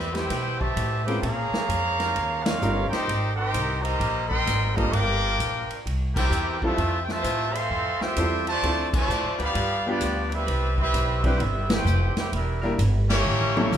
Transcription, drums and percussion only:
0.15 snare, ride
0.30 kick, snare, ride
0.61 kick
0.77 kick, hi-hat pedal, ride
1.08 ride
1.23 kick, ride
1.54 snare
1.69 kick, hi-hat pedal, ride
2.00 snare, ride
2.15 kick, ride
2.46 snare, ride
2.62 hi-hat pedal
2.93 snare, ride
3.08 kick, ride
3.54 kick, hi-hat pedal, ride
3.85 ride
4.00 kick, ride
4.31 kick
4.47 kick, snare, hi-hat pedal, ride
4.77 kick, ride
4.93 kick, ride
5.39 kick, hi-hat pedal, ride
5.70 ride
5.86 kick, ride
6.16 kick, crash
6.32 hi-hat pedal
6.62 kick
6.78 kick, ride
7.08 snare
7.24 kick, hi-hat pedal, ride
7.55 ride
7.71 kick
8.01 snare
8.16 kick, hi-hat pedal, ride
8.47 ride
8.63 kick, ride
8.93 kick, crash
9.10 hi-hat pedal
9.40 ride
9.55 kick, ride
10.01 kick, hi-hat pedal, ride
10.32 ride
10.48 kick, ride
10.78 kick
10.94 kick, hi-hat pedal, ride
11.24 kick, ride
11.40 ride
11.70 snare, ride
11.86 hi-hat pedal
12.16 snare, ride
12.32 kick, ride
12.79 kick, hi-hat pedal, ride
13.10 snare, ride
13.26 mid tom
13.41 mid tom
13.57 high tom
13.72 hi-hat pedal, mid tom

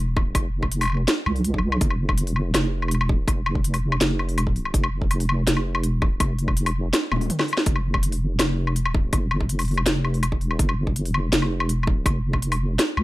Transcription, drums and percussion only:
0.17 kick, low woodblock
0.35 kick, closed hi-hat, low woodblock
0.63 kick, low woodblock
0.72 closed hi-hat
0.81 open hi-hat, low woodblock
0.83 low woodblock
0.85 low woodblock
0.88 low woodblock
0.90 low woodblock
0.94 low woodblock
1.08 snare, closed hi-hat, low woodblock
1.26 low woodblock
1.36 open hi-hat
1.44 closed hi-hat
1.54 kick
1.58 low woodblock
1.72 low woodblock
1.81 kick, closed hi-hat
1.90 low woodblock
2.09 kick, low woodblock
2.18 closed hi-hat
2.27 open hi-hat
2.36 low woodblock
2.54 snare, closed hi-hat, low woodblock
2.82 low woodblock
2.88 closed hi-hat, low woodblock
2.95 low woodblock
3.01 low woodblock
3.09 kick
3.28 kick, closed hi-hat, low woodblock
3.46 low woodblock
3.55 kick
3.64 closed hi-hat
3.74 open hi-hat, low woodblock
3.92 low woodblock
4.01 snare, closed hi-hat
4.19 low woodblock
4.29 open hi-hat
4.38 closed hi-hat, low woodblock
4.47 kick
4.56 open hi-hat
4.65 low woodblock
4.74 kick, closed hi-hat
4.84 low woodblock
5.02 kick
5.11 closed hi-hat, low woodblock
5.20 open hi-hat
5.29 low woodblock
5.47 snare, closed hi-hat
5.57 low woodblock
5.75 low woodblock
5.84 closed hi-hat
6.02 kick, low woodblock
6.20 kick, closed hi-hat, low woodblock
6.39 closed hi-hat
6.48 kick, low woodblock
6.57 closed hi-hat
6.66 open hi-hat, low woodblock
6.93 snare, closed hi-hat, low woodblock
7.12 high tom, low woodblock
7.16 high tom
7.21 open hi-hat, high tom
7.26 high tom
7.30 closed hi-hat, mid tom
7.39 snare, low woodblock
7.48 open hi-hat
7.53 low woodblock
7.57 snare
7.66 kick, closed hi-hat
7.76 low woodblock
7.94 kick, low woodblock
8.03 closed hi-hat
8.12 open hi-hat
8.39 snare, closed hi-hat, low woodblock
8.67 low woodblock
8.76 closed hi-hat
8.86 low woodblock
8.95 kick
9.13 kick, closed hi-hat, low woodblock
9.31 low woodblock
9.41 kick
9.49 closed hi-hat
9.59 open hi-hat, low woodblock
9.62 open hi-hat
9.65 open hi-hat
9.68 open hi-hat
9.71 open hi-hat
9.74 open hi-hat, low woodblock
9.86 snare, closed hi-hat
10.05 low woodblock
10.14 open hi-hat
10.23 closed hi-hat, low woodblock
10.32 kick
10.41 open hi-hat
10.51 low woodblock
10.59 kick, closed hi-hat
10.69 low woodblock
10.87 kick
10.96 closed hi-hat
11.06 open hi-hat
11.14 low woodblock
11.33 snare, closed hi-hat
11.42 low woodblock
11.60 low woodblock
11.69 closed hi-hat
11.83 low woodblock
11.87 kick
12.06 kick, closed hi-hat, low woodblock
12.33 kick, low woodblock
12.42 closed hi-hat
12.52 open hi-hat, low woodblock
12.79 snare, closed hi-hat, low woodblock
12.97 low woodblock

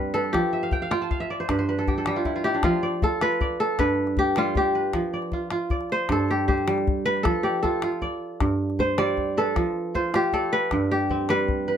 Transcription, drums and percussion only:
0.24 calabash click
0.34 calabash thump, calabash click
0.71 calabash thump
0.91 calabash click
1.01 calabash click
1.11 calabash thump
1.49 calabash thump, calabash click
1.79 calabash click
1.88 calabash thump
2.06 calabash click
2.25 calabash thump
2.53 calabash click
2.63 calabash thump, calabash click
3.02 calabash thump
3.21 calabash click
3.32 calabash click
3.41 calabash thump
3.79 calabash thump, calabash click
4.07 calabash click
4.17 calabash thump
4.36 calabash click
4.55 calabash thump
4.84 calabash click
4.93 calabash thump, calabash click
5.22 calabash click
5.32 calabash thump
5.51 calabash click
5.70 calabash thump
5.81 calabash click
5.90 calabash click
6.09 calabash thump, calabash click
6.20 calabash click
6.29 calabash click
6.48 calabash thump
6.58 calabash click
6.68 calabash click
6.78 calabash click
6.87 calabash thump
7.17 calabash click
7.25 calabash thump, calabash click
7.64 calabash thump
7.82 calabash click
7.92 calabash click
8.02 calabash thump
8.40 calabash thump, calabash click
8.70 calabash click
8.79 calabash thump
8.98 calabash click
9.17 calabash thump
9.47 calabash click
9.56 calabash thump, calabash click
9.95 calabash thump
10.14 calabash click
10.24 calabash click
10.33 calabash thump
10.71 calabash thump, calabash click
11.01 calabash click
11.10 calabash thump
11.29 calabash click
11.48 calabash thump

